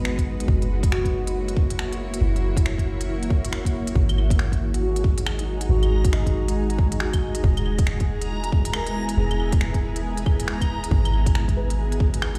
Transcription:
Already playing: G#1 G#3 B3 D#4 F#4 B4
0.05 finger snap
0.18 kick, closed hi-hat
0.40 closed hi-hat
0.48 F#1 A#3 E4 C#5, kick
0.62 closed hi-hat
0.83 kick, closed hi-hat
0.91 F#4, finger snap
1.05 kick, closed hi-hat
1.27 closed hi-hat
1.48 closed hi-hat
1.57 kick
1.70 closed hi-hat
1.79 finger snap
1.93 closed hi-hat
2.14 closed hi-hat
2.21 F#1 E4
2.36 closed hi-hat
2.57 kick, closed hi-hat
2.66 finger snap
2.78 kick, closed hi-hat
3.01 closed hi-hat
3.23 closed hi-hat
3.30 kick
3.45 closed hi-hat
3.53 finger snap
3.65 kick, closed hi-hat
3.87 closed hi-hat
3.95 G#1 G#3 D#4 G#4 A#5, kick
4.09 closed hi-hat, claves
4.18 claves
4.30 kick, closed hi-hat
4.39 finger snap
4.52 kick, closed hi-hat
4.74 closed hi-hat
4.82 F#4
4.96 closed hi-hat
5.04 kick
5.18 closed hi-hat
5.26 finger snap, claves
5.39 closed hi-hat
5.61 closed hi-hat
5.69 G#1 F#4
5.83 closed hi-hat, claves
6.04 kick, closed hi-hat
6.13 D#4, finger snap
6.26 kick, closed hi-hat
6.31 F#4
6.48 closed hi-hat
6.70 closed hi-hat
6.79 kick
6.92 closed hi-hat
7.00 F#4, finger snap
7.13 kick, closed hi-hat, claves
7.35 closed hi-hat
7.44 E1 B3 E4, kick
7.57 closed hi-hat, claves
7.66 claves
7.79 kick, closed hi-hat
7.87 finger snap
8.00 kick, closed hi-hat
8.22 closed hi-hat
8.44 closed hi-hat
8.52 kick
8.65 closed hi-hat
8.74 A#4, finger snap, claves
8.87 closed hi-hat
9.09 closed hi-hat
9.17 E1 G#4
9.31 closed hi-hat, claves
9.40 claves
9.52 kick, closed hi-hat
9.61 finger snap
9.74 kick, closed hi-hat
9.96 closed hi-hat
10.17 closed hi-hat
10.26 kick, claves
10.40 closed hi-hat
10.48 finger snap
10.61 kick, closed hi-hat, claves
10.84 closed hi-hat
10.91 G#1 D#4 F#4, kick
11.05 closed hi-hat, claves
11.13 claves
11.26 kick, closed hi-hat
11.35 finger snap
11.48 kick, closed hi-hat
11.57 B4
11.70 closed hi-hat
11.92 closed hi-hat
12.00 kick
12.14 closed hi-hat
12.22 finger snap, claves
12.35 closed hi-hat

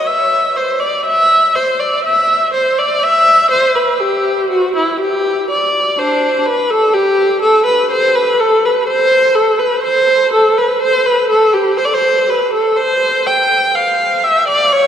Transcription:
0.07 E5
0.56 C5
0.80 D5
1.06 E5
1.56 C5
1.79 D5
2.05 E5
2.54 C5
2.78 D5
3.03 E5
3.51 C5
3.75 B4
4.00 G4
4.50 F#4
4.76 E4
5.00 G4
5.50 D5
5.98 D4 C5
6.46 B4
6.70 A4
6.94 G4
7.42 A4
7.66 B4
7.91 C5
8.15 B4
8.40 A4
8.65 B4
8.88 C5
9.35 A4
9.59 B4
9.84 C5
10.33 A4
10.58 B4
10.81 C5
11.06 B4
11.30 A4
11.54 G4
11.77 C5
11.85 D5
11.94 C5
12.29 B4
12.53 A4
12.77 C5
13.26 G5
13.75 F5
14.24 E5
14.48 D5
14.72 C#5

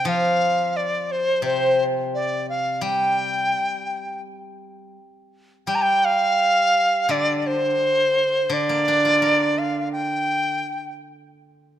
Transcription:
0.05 F3 F5
0.76 D5
1.11 C5
1.42 C3 C5
2.14 D5
2.49 F5
2.81 G3 G5
5.67 G3 G5
5.75 A#5
5.82 G5
6.05 F5
7.09 D3 D5
7.38 D5
7.46 C5
8.50 D3 D5
8.69 A#3
8.88 D4
9.05 F4
9.22 A#4
9.58 F5
9.92 G5

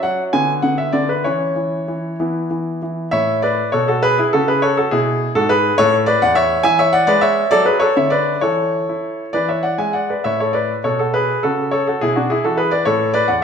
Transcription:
Already playing: C#4 F#4
0.03 F#3 F#5
0.33 D3 B3 F#4 G#5
0.62 D3 F#5
0.78 E5
0.93 D3 D5
1.09 B4
1.24 E3 C#4 E4 C#5
1.56 E3
1.88 E3
2.20 E3 B3 E4
2.51 E3
2.82 E3
3.11 A2 C#5 E5
3.42 B4 D5
3.72 B2 A4 C#5
3.88 F#4 A4
4.03 G#4 B4
4.18 E4 G#4
4.33 C#3 F#4 A4
4.48 G#4 B4
4.62 A4 C#5
4.77 F#4 A4
4.91 B2 E4 G#4
5.35 G#2 F#4 A4
5.49 G#4 B4
5.78 A2 A4 C#5
6.06 B4 D5
6.22 E2 D5 F#5
6.35 C#5 E5
6.63 E3 E5 G#5
6.79 C#5 E5
6.93 D5 F#5
7.07 G#3 B4 D5
7.21 C#5 E5
7.51 F#3 A4 D5
7.66 G#4 B4
7.80 A4 C#5
7.97 D3 C#5 E5
8.10 B4 D5
8.41 E3 A4 C#5
8.89 E4
9.33 E3 B4 D5
9.49 C#5 E5
9.63 D5 F#5
9.78 G#3 E5 G#5
9.93 D5 F#5
10.09 B4 D5
10.24 A2 C#5 E5
10.40 A4 C#5
10.53 B4 D5
10.84 B2 A4 C#5
10.99 F#4 A4
11.14 G#4 B4
11.43 C#3 F#4 A4
11.71 A4 C#5
11.87 F#4 A4
12.01 B2 E4 G#4
12.16 D4 F#4
12.30 E4 G#4
12.44 E3 F#4 A4
12.57 G#4 B4
12.71 B4 D5
12.85 A2 A4 C#5
13.14 B4 D5
13.28 E2 D5 F#5

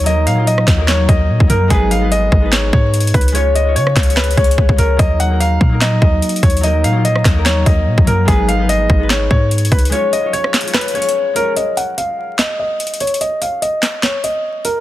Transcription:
Already playing: D#2 C#4
0.04 F#3 A#3 D#4 D#5, closed hi-hat
0.09 A#4
0.26 A#2 F5, closed hi-hat
0.35 F#3 A#3 D#4
0.40 F4
0.47 D#5, closed hi-hat
0.58 cross-stick
0.68 D#2, kick, cross-stick, snare, clap, closed hi-hat
0.76 F#3 A#3 D#4
0.81 A#4
0.88 C#5, snare, clap, closed hi-hat
1.06 D#2 F#3 A#3 D#4 D#5, kick, closed hi-hat
1.11 A#4
1.29 A#2
1.40 D#2, kick
1.47 F#2 F#3 A#3 D#4 A#4, closed hi-hat
1.52 A#4
1.68 G#1 G#3 B3 D#4 G#4, kick, closed hi-hat
1.73 B4
1.91 F5, closed hi-hat
1.99 G#3 B3 D#4
2.04 B4
2.12 D#5, closed hi-hat
2.32 G#1, kick
2.40 G#3 B3 D#4
2.46 B4
2.53 C#5, snare, clap, closed hi-hat
2.73 G#2 C#5, kick
2.94 closed hi-hat
3.00 closed hi-hat
3.07 closed hi-hat
3.14 C#2 B4, kick, closed hi-hat
3.21 closed hi-hat
3.28 closed hi-hat
3.32 G#3 C#4 F4 C#5, closed hi-hat
3.37 C#5
3.55 D#5, closed hi-hat
3.64 G#3 C#4 F4
3.69 C#5
3.76 C#3 C#5, closed hi-hat
3.87 cross-stick
3.96 C#2, kick, snare, clap, closed hi-hat
4.03 G#3 C#4, closed hi-hat
4.08 F4 C#5, closed hi-hat
4.17 B4, snare, clap, closed hi-hat
4.24 closed hi-hat
4.31 closed hi-hat
4.35 C#2 G#3 C#4 F4 C#5, kick, closed hi-hat
4.40 C#5
4.44 closed hi-hat
4.51 closed hi-hat
4.58 C#2, kick
4.69 C#2, kick
4.76 C#2 G#3 C#4 F4 A#4, closed hi-hat
4.81 C#5
4.97 D#2 F#3 A#3 D#4 D#5, kick, closed hi-hat
5.02 A#4
5.20 F#5, closed hi-hat
5.28 F#3 A#3 D#4
5.33 A#4
5.40 F5, closed hi-hat
5.61 A#2, kick
5.69 F#3 A#3 D#4
5.74 A#4
5.81 D#5, snare, clap, closed hi-hat
6.02 D#2 D#5, kick
6.22 closed hi-hat
6.29 closed hi-hat
6.36 closed hi-hat
6.43 D#2 C#5, kick, closed hi-hat
6.50 closed hi-hat
6.57 closed hi-hat
6.61 F#3 A#3 D#4 D#5, closed hi-hat
6.66 A#4
6.84 A#2 F5, closed hi-hat
6.92 F#3 A#3 D#4
6.97 F4
7.05 D#5, closed hi-hat
7.16 cross-stick
7.25 D#2, kick, cross-stick, snare, clap, closed hi-hat
7.33 F#3 A#3 D#4
7.39 A#4
7.46 C#5, snare, clap, closed hi-hat
7.64 D#2 F#3 A#3 D#4 D#5, kick, closed hi-hat
7.69 A#4
7.87 A#2
7.98 D#2, kick
8.05 F#2 F#3 A#3 D#4 A#4, closed hi-hat
8.10 A#4
8.25 G#1 G#3 B3 D#4 G#4, kick, closed hi-hat
8.30 B4
8.48 F5, closed hi-hat
8.57 G#3 B3 D#4
8.62 B4
8.69 D#5, closed hi-hat
8.90 G#1, kick
8.98 G#3 B3 D#4
9.03 B4
9.10 C#5, snare, clap, closed hi-hat
9.31 G#2 C#5, kick
9.51 closed hi-hat
9.58 closed hi-hat
9.65 closed hi-hat
9.72 C#2 B4, kick, closed hi-hat
9.79 closed hi-hat
9.85 closed hi-hat
9.90 G#3 C#4 F4 C#5, closed hi-hat
9.95 C#5
10.13 D#5, closed hi-hat
10.21 G#3 C#4 F4
10.26 C#5
10.33 C#5, closed hi-hat
10.44 cross-stick
10.54 snare, clap, closed hi-hat
10.61 G#3 C#4, closed hi-hat
10.66 F4 C#5, closed hi-hat
10.74 B4, snare, clap, closed hi-hat
10.81 closed hi-hat
10.88 closed hi-hat
10.92 G#3 C#4 F4 C#5, closed hi-hat
10.98 C#5
11.02 closed hi-hat
11.09 closed hi-hat
11.34 G#3 C#4 F4 A#4, closed hi-hat
11.39 C#5
11.57 D#5, closed hi-hat
11.77 F#5, closed hi-hat
11.98 F5, closed hi-hat
12.39 D#5, snare, clap, closed hi-hat
12.59 D#5
12.80 closed hi-hat
12.87 closed hi-hat
12.94 closed hi-hat
13.00 C#5, closed hi-hat
13.07 closed hi-hat
13.14 closed hi-hat
13.21 D#5, closed hi-hat
13.42 F5, closed hi-hat
13.62 D#5, closed hi-hat
13.83 snare, clap, closed hi-hat
14.03 C#5, snare, clap, closed hi-hat
14.24 D#5, closed hi-hat
14.65 A#4, closed hi-hat

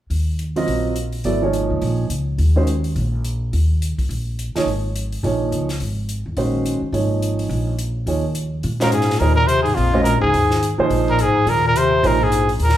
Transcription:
0.10 D#2, open hi-hat
0.39 closed hi-hat
0.56 F#3 C4 F4 A#4 D#5, open hi-hat
0.67 A#1, open hi-hat
0.96 closed hi-hat
1.13 open hi-hat
1.24 G#1 F#3 B3 E4 A4 D5, open hi-hat
1.42 F3 A#3 D#4 G#4 C#5
1.53 closed hi-hat
1.70 C#2
1.82 A#1, open hi-hat
2.10 C#2, closed hi-hat
2.38 D#2, open hi-hat
2.56 D#3 G#3 C#4 F#4 C5
2.67 closed hi-hat
2.84 open hi-hat
2.96 A#1, open hi-hat
3.25 closed hi-hat
3.53 D#2, open hi-hat
3.82 closed hi-hat
3.98 muted upright bass stroke, kick, open hi-hat
4.09 A#1, open hi-hat
4.39 closed hi-hat
4.55 F3 A#3 D#4 G#4 C#5, muted upright bass stroke, snare, open hi-hat
4.66 G#1, open hi-hat
4.96 closed hi-hat
5.12 open hi-hat
5.23 A#1 F3 A#3 D#4 G#4 C#5, open hi-hat
5.52 C#2, closed hi-hat
5.69 snare, open hi-hat
5.80 G#1, open hi-hat
6.09 closed hi-hat
6.26 E2
6.37 A#1 D#3 G#3 C#4 F#4 C5, open hi-hat
6.66 closed hi-hat
6.81 muted upright bass stroke
6.92 G#1 F3 A#3 D#4 G#4 C#5, open hi-hat
7.22 closed hi-hat
7.39 open hi-hat
7.49 A#1, open hi-hat
7.79 closed hi-hat
8.06 D#2 F3 A#3 D#4 G#4 C#5, open hi-hat
8.35 closed hi-hat
8.63 A#2, open hi-hat
8.80 A#2 G#3 C#4 F#4 A#4 C5 F5, snare
8.92 G#2 G#4, closed hi-hat
9.01 snare
9.10 snare
9.18 D#2 A#2 F3 A#3 D#4 G#4 A#4, open hi-hat
9.22 C5
9.36 A#2 A#4
9.46 C3 C5, closed hi-hat
9.63 G#2 G#4, open hi-hat
9.75 A#1 F2 F4, open hi-hat
9.94 G#3 C#4 F#4 C5 D#5
10.04 A#2 A#4, closed hi-hat
10.20 C#2 G#2 G#4
10.33 D#2, open hi-hat
10.51 snare
10.63 closed hi-hat
10.78 F3 A#3 D#4 G#4 C5, muted upright bass stroke
10.90 A#1, open hi-hat
11.08 A#2 A#4
11.19 G#2 G#4, closed hi-hat
11.34 muted upright bass stroke
11.46 D#2 A#2 A#4, open hi-hat
11.65 A#2 A#4
11.76 C3 C5, closed hi-hat
12.03 A#1 A#2 F3 A#3 D#4 G#4 A#4 C5, open hi-hat
12.21 G#2 G#4
12.32 closed hi-hat
12.49 open hi-hat
12.59 D#2 A#2 A#4, open hi-hat
12.69 snare

